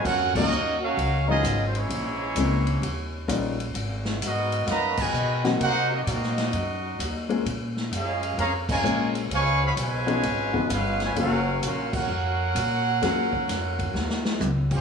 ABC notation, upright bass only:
X:1
M:4/4
L:1/8
Q:"Swing" 1/4=130
K:F#
V:1 name="Upright bass" clef=bass
(3F,, E,, C,, D,,2 C,,2 G,,,2 | A,,,2 C,,2 D,,2 A,,,2 | G,,,2 G,,2 F,,2 B,,2 | =C,2 _B,,2 F,,2 D,,2 |
A,,2 F,,2 E,,2 A,,,2 | C,,2 B,,,2 G,,,2 =G,,,2 | F,,,2 A,,,2 E,,2 A,,2 | F,,2 E,,2 D,,2 C,,2 |]